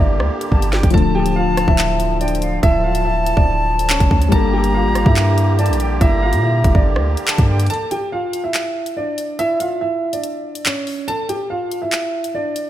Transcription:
Already playing: accordion D3 A#3 G4, felt piano G3 A#3 D4 G4
0.00 808-style bass G1, grand piano D4 D5
0.20 808-style bass D2, cross-stick
0.41 closed hi-hat
0.52 808-style bass G1, flute A5, kick
0.62 closed hi-hat
0.73 flute G5, snare
0.83 808-style bass G1, kick, closed hi-hat
0.90 808-style bass D1, felt piano F3 A3, accordion F3, grand piano A5, flute A5, kick, closed hi-hat
0.94 felt piano D3, grand piano A4, closed hi-hat
1.15 grand piano G4 G5
1.26 closed hi-hat
1.36 grand piano F4 F5
1.47 808-style bass C#1
1.57 808-style bass D1, cross-stick, closed hi-hat
1.68 808-style bass D1, grand piano E4 E5, kick
1.78 clap, closed hi-hat
2.00 closed hi-hat
2.21 grand piano D4 D5, flute G5, closed hi-hat
2.28 closed hi-hat
2.35 closed hi-hat
2.42 flute F5, closed hi-hat
2.63 808-style bass D1, grand piano E4 E5, flute A5, kick, closed hi-hat
2.84 grand piano F4 F5
2.95 closed hi-hat
3.05 grand piano E4 E5
3.26 closed hi-hat
3.37 808-style bass D1, grand piano D4 D5, kick
3.79 closed hi-hat
3.90 grand piano C#4 C#5, clap
4.00 808-style bass F1, kick, closed hi-hat
4.11 808-style bass D2, kick
4.22 closed hi-hat
4.29 808-style bass G1, accordion D3 A#3 G4, felt piano G3 A#3, grand piano A4 A5, flute A#5, kick, closed hi-hat
4.33 felt piano D4 G4
4.53 grand piano G4 G5
4.64 closed hi-hat
4.74 grand piano F4 F5
4.85 808-style bass A1
4.95 808-style bass G1, cross-stick, closed hi-hat
5.06 808-style bass G2, grand piano E4 E5, kick
5.17 clap, closed hi-hat
5.38 closed hi-hat
5.59 grand piano D4 D5, flute A5, closed hi-hat
5.66 808-style bass A#1, closed hi-hat
5.73 closed hi-hat
5.80 flute G5, closed hi-hat
6.01 808-style bass G1, grand piano E4 E5, flute A#5, kick, closed hi-hat
6.22 grand piano F4 F5
6.33 808-style bass A#2, closed hi-hat
6.43 grand piano E4 E5
6.64 808-style bass F1, kick, closed hi-hat
6.75 808-style bass G1, grand piano D4 D5, kick
6.96 808-style bass D2, cross-stick
7.17 closed hi-hat
7.28 flute A5, clap
7.38 808-style bass G2, kick, closed hi-hat
7.49 flute G5
7.60 closed hi-hat
7.66 grand piano A5, closed hi-hat
7.70 grand piano A4, closed hi-hat
7.74 closed hi-hat
7.91 grand piano G4 G5, closed hi-hat
8.12 grand piano F4 F5
8.33 closed hi-hat
8.44 grand piano E4 E5
8.54 clap, closed hi-hat
8.86 closed hi-hat
8.97 grand piano D4 D5
9.18 closed hi-hat
9.39 grand piano E4 E5, closed hi-hat
9.60 grand piano F4 F5, closed hi-hat
9.81 grand piano E4 E5
10.13 grand piano D4 D5, closed hi-hat
10.24 closed hi-hat
10.55 closed hi-hat
10.66 grand piano C#4 C#5, clap
10.87 open hi-hat
11.08 grand piano A4 A5, closed hi-hat
11.29 grand piano G4 G5, closed hi-hat
11.50 grand piano F4 F5
11.71 closed hi-hat
11.82 grand piano E4 E5
11.93 clap, closed hi-hat
12.24 closed hi-hat
12.35 grand piano D4 D5
12.56 closed hi-hat

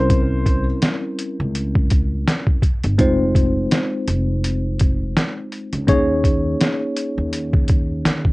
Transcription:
Already playing: upright bass C2, tine electric piano G3 C4 C#4 E4 A#4, felt piano C5
0.10 kick, closed hi-hat
0.46 kick, closed hi-hat
0.82 snare, closed hi-hat
1.18 closed hi-hat
1.40 upright bass C#2
1.55 closed hi-hat
1.75 kick
1.90 kick, closed hi-hat
2.28 snare, closed hi-hat
2.47 kick
2.62 kick, closed hi-hat
2.84 upright bass G1, closed hi-hat
2.98 upright bass F1, tine electric piano G#3 C4 D#4 F4 C5, kick, closed hi-hat
3.35 kick, closed hi-hat
3.72 snare, closed hi-hat
4.08 upright bass F1, closed hi-hat
4.44 closed hi-hat
4.79 kick, closed hi-hat
5.17 snare, closed hi-hat
5.52 closed hi-hat
5.73 upright bass C#2, closed hi-hat
5.87 upright bass D#2, tine electric piano A#3 C#4 D#4 G#4 C#5, kick, closed hi-hat
6.24 kick, closed hi-hat
6.61 snare, closed hi-hat
6.96 closed hi-hat
7.18 upright bass D#2
7.33 closed hi-hat
7.53 kick
7.68 kick, closed hi-hat
8.05 upright bass D#3, snare, closed hi-hat
8.25 kick

